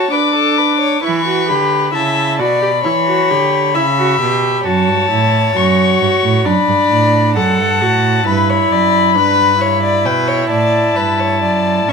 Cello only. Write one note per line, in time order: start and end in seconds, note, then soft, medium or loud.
1.04 1.51 E3 medium
1.50 1.94 D3 medium
1.95 2.41 C#3 medium
2.40 2.87 B2 medium
2.86 3.32 E3 medium
3.31 3.77 D3 medium
3.76 4.20 C#3 medium
4.21 4.65 B2 medium
4.66 4.90 F#2 medium
4.88 5.10 G2 medium
5.11 5.55 A2 medium
5.56 6.00 F#2 medium
6.01 6.09 G2 medium
6.24 6.45 A2 medium
6.46 6.54 F#2 medium
6.68 6.76 G2 medium
6.91 7.37 A2 medium
7.36 7.60 F#2 medium
7.58 7.83 G2 medium
7.81 8.26 A2 medium
8.26 8.70 G2 medium
8.71 9.17 F#2 medium
9.16 10.07 G2 medium
10.06 10.51 B2 medium
10.51 10.96 A2 medium
10.96 11.44 G2 medium
11.42 11.88 F#2 medium
11.88 11.93 A2 medium